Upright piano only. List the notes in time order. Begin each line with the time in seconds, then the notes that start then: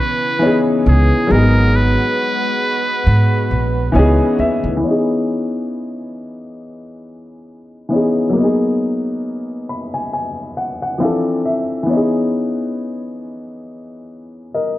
0.39 E3 B3 C#4
0.44 D#4 G#4
1.27 F#3 G#3 B3
1.32 D#4 G#4
3.92 E3 B3 C#4 G#5
3.97 D#4 G#4
4.40 E5
4.77 E3 B3
4.84 C#4 D#4
4.91 G#4
7.89 E3 B3 C#4
7.94 D#4 G#4
8.30 F#3 A#3
8.37 B3 D#4
8.44 G#4
9.69 B5
9.94 G#5
10.13 G#5
10.57 F#5
10.82 F#5
10.98 F3 C4 D4 F5
11.03 E3 A4
11.45 E5
11.83 E3 B3
11.90 C#4 D#4
11.97 G#4
14.54 A#4 D#5